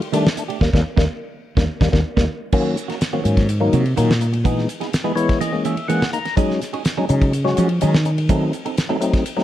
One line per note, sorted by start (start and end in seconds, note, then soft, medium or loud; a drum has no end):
0.02 ride medium
0.12 0.25 D#3 medium
0.12 0.29 D#3 loud
0.12 0.29 G3 medium
0.12 0.25 A3 medium
0.12 0.29 A3 medium
0.12 0.24 D4 medium
0.12 0.30 D4 loud
0.12 0.24 G4 medium
0.12 hi-hat pedal medium
0.12 ride loud
0.25 muted clean electric guitar stroke soft
0.25 snare loud
0.37 0.44 A3 soft
0.37 0.44 D4 soft
0.37 muted clean electric guitar stroke soft
0.37 hi-hat pedal medium
0.37 ride medium
0.48 0.61 A3 soft
0.48 0.61 D4 soft
0.48 0.61 G4 medium
0.48 ride medium
0.61 0.70 D#2 loud
0.61 0.70 D#3 loud
0.61 0.70 G3 medium
0.61 0.69 A#3 loud
0.61 0.70 A#3 medium
0.61 0.69 C#4 loud
0.61 0.69 D#4 loud
0.61 kick medium
0.61 snare medium
0.73 0.82 D#2 loud
0.73 0.82 D#3 loud
0.73 0.82 G3 loud
0.73 0.81 A#3 loud
0.73 0.82 A#3 loud
0.73 0.81 C#4 loud
0.73 0.81 D#4 loud
0.73 kick loud
0.73 snare medium
0.96 1.06 D#2 loud
0.96 1.05 D#3 medium
0.96 1.05 G3 medium
0.96 1.05 A#3 loud
0.96 1.04 C#4 loud
0.96 1.04 D#4 medium
0.96 kick loud
0.96 snare loud
1.57 1.66 D#2 loud
1.57 1.65 D#3 medium
1.57 1.65 G3 loud
1.57 1.65 A#3 medium
1.57 1.65 C#4 medium
1.57 1.65 D#4 medium
1.57 kick loud
1.57 snare loud
1.81 1.90 D#2 medium
1.81 1.89 D#3 medium
1.81 1.89 G3 medium
1.81 1.89 A#3 loud
1.81 1.89 C#4 loud
1.81 1.89 D#4 loud
1.81 kick loud
1.81 snare loud
1.92 2.02 D#2 loud
1.92 2.01 D#3 loud
1.92 2.00 G3 loud
1.92 2.00 A#3 loud
1.92 2.01 A#3 loud
1.92 2.01 C#4 loud
1.92 2.01 D#4 loud
1.92 kick loud
1.92 snare medium
2.17 2.26 D#2 medium
2.17 2.25 D#3 loud
2.17 2.25 G3 medium
2.17 2.24 A#3 loud
2.17 2.25 A#3 loud
2.17 2.24 C#4 loud
2.17 2.25 D#4 loud
2.17 kick medium
2.17 snare loud
2.52 2.67 D#3 medium
2.52 2.77 D#3 medium
2.52 2.77 F#3 medium
2.52 2.68 A#3 medium
2.52 2.77 A#3 medium
2.52 2.68 C#4 medium
2.52 2.77 C#4 loud
2.52 2.68 F#4 medium
2.52 kick loud
2.52 crash loud
2.77 muted clean electric guitar stroke soft
2.77 hi-hat pedal medium
2.77 ride medium
2.88 3.00 A#3 soft
2.88 2.96 A#3 soft
2.88 3.00 C#4 medium
2.88 2.95 D#4 soft
2.88 3.00 F#4 medium
2.88 snare soft
2.88 ride medium
3.00 muted clean electric guitar stroke soft
3.00 snare loud
3.00 hi-hat pedal medium
3.00 ride medium
3.13 3.21 D#3 medium
3.13 3.24 D#3 medium
3.13 3.21 F#3 medium
3.13 3.21 A#3 medium
3.13 3.25 A#3 medium
3.13 3.21 C4 medium
3.13 3.25 C#4 medium
3.13 3.25 F#4 medium
3.24 3.70 G#2 medium
3.24 3.48 D#3 medium
3.24 3.48 F#3 medium
3.24 3.48 A#3 medium
3.24 3.48 C#4 medium
3.24 muted clean electric guitar stroke soft
3.24 hi-hat pedal medium
3.24 ride medium
3.37 muted clean electric guitar stroke soft
3.37 kick medium
3.37 snare soft
3.37 ride medium
3.49 hi-hat pedal medium
3.49 ride medium
3.60 3.84 D#3 medium
3.60 3.84 F#3 medium
3.60 3.84 A#3 medium
3.60 3.85 D#4 loud
3.60 muted clean electric guitar stroke soft
3.73 3.96 C3 medium
3.73 3.85 D#3 medium
3.73 3.85 A#3 medium
3.73 3.84 C#4 medium
3.73 3.84 F#4 medium
3.73 hi-hat pedal medium
3.73 ride medium
3.85 muted clean electric guitar stroke soft
3.85 ride medium
3.96 4.66 A#2 medium
3.96 4.11 D#3 medium
3.96 4.13 D#3 medium
3.96 4.13 F#3 medium
3.96 4.11 A#3 medium
3.96 4.13 A#3 medium
3.96 4.12 C#4 medium
3.96 4.13 D#4 medium
3.96 4.12 F#4 medium
3.96 hi-hat pedal medium
3.96 ride medium
4.11 snare loud
4.20 4.27 A#3 soft
4.20 4.27 D#4 soft
4.20 muted clean electric guitar stroke soft
4.20 hi-hat pedal medium
4.20 ride medium
4.33 muted clean electric guitar stroke soft
4.33 ride medium
4.44 4.59 E3 medium
4.44 4.68 E3 medium
4.44 4.69 G#3 medium
4.44 4.60 B3 medium
4.44 4.69 B3 medium
4.44 4.69 D#4 medium
4.44 4.60 D#4 medium
4.44 4.60 G#4 medium
4.44 kick loud
4.44 hi-hat pedal medium
4.44 ride medium
4.58 snare soft
4.69 muted clean electric guitar stroke soft
4.69 hi-hat pedal medium
4.69 ride medium
4.80 4.87 B3 soft
4.80 4.91 B3 soft
4.80 4.91 D#4 medium
4.80 4.87 E4 soft
4.80 4.91 G#4 medium
4.80 snare soft
4.80 ride medium
4.92 muted clean electric guitar stroke soft
4.92 snare loud
4.92 hi-hat pedal medium
4.92 ride medium
5.04 5.12 E3 medium
5.04 5.15 E3 medium
5.04 5.13 G#3 medium
5.04 5.13 B3 medium
5.04 5.16 B3 medium
5.04 5.16 D#4 medium
5.04 5.13 E4 medium
5.04 5.16 G#4 medium
5.16 5.40 E3 medium
5.16 5.40 G#3 medium
5.16 5.40 B3 medium
5.16 5.40 E4 loud
5.16 5.39 C#5 medium
5.16 muted clean electric guitar stroke soft
5.16 hi-hat pedal medium
5.16 ride medium
5.29 muted clean electric guitar stroke soft
5.29 kick medium
5.29 snare soft
5.29 ride medium
5.40 5.53 E3 medium
5.40 5.53 A#3 medium
5.40 5.53 C#4 medium
5.40 5.52 G#4 medium
5.40 5.63 D#5 medium
5.40 hi-hat pedal medium
5.40 ride medium
5.52 5.76 E3 loud
5.52 5.76 G#3 medium
5.52 5.76 A#3 loud
5.52 5.76 C#4 loud
5.52 muted clean electric guitar stroke soft
5.65 5.77 E3 medium
5.65 5.77 A#3 medium
5.65 5.76 C#4 medium
5.65 5.76 G#4 medium
5.65 5.87 E5 medium
5.65 hi-hat pedal medium
5.65 ride medium
5.77 muted clean electric guitar stroke soft
5.77 ride medium
5.88 6.04 E3 medium
5.88 6.05 G#3 medium
5.88 6.05 A#3 medium
5.88 6.04 A#3 medium
5.88 6.05 C#4 loud
5.88 6.04 C#4 medium
5.88 6.04 G#4 loud
5.88 6.11 F#5 medium
5.88 hi-hat pedal medium
5.88 ride medium
6.02 snare loud
6.13 6.19 A#3 soft
6.13 6.19 D#4 soft
6.13 6.36 A#5 medium
6.13 muted clean electric guitar stroke soft
6.13 hi-hat pedal medium
6.13 ride medium
6.25 muted clean electric guitar stroke soft
6.25 snare soft
6.25 ride medium
6.37 6.60 F#3 loud
6.37 6.52 F#3 medium
6.37 6.61 G#3 medium
6.37 6.61 C#4 medium
6.37 6.52 C#4 medium
6.37 6.61 D#4 loud
6.37 6.52 D#4 medium
6.37 6.52 G#4 medium
6.37 kick loud
6.37 hi-hat pedal medium
6.37 ride medium
6.50 snare soft
6.61 muted clean electric guitar stroke soft
6.61 snare soft
6.61 hi-hat pedal medium
6.61 ride medium
6.73 6.79 C#4 soft
6.73 6.84 C#4 soft
6.73 6.84 D#4 medium
6.73 6.79 F#4 soft
6.73 6.84 G#4 medium
6.73 ride medium
6.85 muted clean electric guitar stroke soft
6.85 snare loud
6.85 hi-hat pedal medium
6.85 ride medium
6.97 7.05 F#3 medium
6.97 7.08 F#3 medium
6.97 7.05 G#3 medium
6.97 7.08 C#4 medium
6.97 7.05 C#4 medium
6.97 7.08 D#4 medium
6.97 7.06 D#4 medium
6.97 7.09 G#4 medium
7.09 7.54 C#3 medium
7.09 7.33 F#3 medium
7.09 7.33 G#3 medium
7.09 7.33 C#4 medium
7.09 7.33 D#4 medium
7.09 muted clean electric guitar stroke soft
7.09 hi-hat pedal medium
7.09 ride medium
7.22 muted clean electric guitar stroke soft
7.22 kick medium
7.22 ride medium
7.33 hi-hat pedal medium
7.33 ride medium
7.45 7.68 F#3 medium
7.45 7.68 G#3 medium
7.45 7.69 C#4 medium
7.45 7.69 F#4 medium
7.45 muted clean electric guitar stroke soft
7.45 snare soft
7.57 7.81 F3 medium
7.57 7.70 F#3 medium
7.57 7.70 C#4 medium
7.57 7.70 D#4 medium
7.57 7.70 G#4 medium
7.57 hi-hat pedal medium
7.57 ride medium
7.69 muted clean electric guitar stroke soft
7.69 ride medium
7.81 8.50 D#3 medium
7.81 7.96 F#3 medium
7.81 7.97 F#3 medium
7.81 7.97 G#3 medium
7.81 7.96 C#4 medium
7.81 7.97 C#4 medium
7.81 7.97 D#4 medium
7.81 7.96 D#4 medium
7.81 7.96 G#4 medium
7.81 hi-hat pedal medium
7.81 ride medium
7.94 snare loud
8.05 8.11 C#4 soft
8.05 8.11 D#4 soft
8.05 muted clean electric guitar stroke soft
8.05 hi-hat pedal medium
8.05 ride medium
8.18 muted clean electric guitar stroke soft
8.18 ride medium
8.29 8.53 F#3 medium
8.29 8.44 F#3 medium
8.29 8.53 A3 medium
8.29 8.53 C4 medium
8.29 8.44 C4 medium
8.29 8.53 D#4 medium
8.29 8.44 D#4 medium
8.29 8.44 A4 medium
8.29 kick loud
8.29 hi-hat pedal medium
8.29 ride medium
8.53 muted clean electric guitar stroke soft
8.53 hi-hat pedal medium
8.53 ride medium
8.65 8.71 C4 soft
8.65 8.77 C4 soft
8.65 8.71 D#4 soft
8.65 8.77 D#4 medium
8.65 8.77 A4 medium
8.65 ride medium
8.77 muted clean electric guitar stroke soft
8.77 snare loud
8.77 hi-hat pedal medium
8.77 ride medium
8.89 8.97 F#3 medium
8.89 9.00 F#3 medium
8.89 8.97 A3 medium
8.89 8.97 C4 medium
8.89 9.00 C4 medium
8.89 8.97 D#4 medium
8.89 9.01 D#4 medium
8.89 9.01 A4 medium
9.00 9.24 F#3 medium
9.00 9.24 A3 medium
9.00 9.25 C4 medium
9.00 9.24 D#4 medium
9.00 muted clean electric guitar stroke soft
9.00 hi-hat pedal medium
9.00 ride medium
9.13 muted clean electric guitar stroke soft
9.13 kick medium
9.13 snare soft
9.13 ride medium
9.26 hi-hat pedal medium
9.26 ride medium
9.37 9.44 F#3 medium
9.37 9.44 A3 medium
9.37 9.44 C4 medium
9.37 9.44 D#4 loud
9.37 muted clean electric guitar stroke medium
9.37 snare soft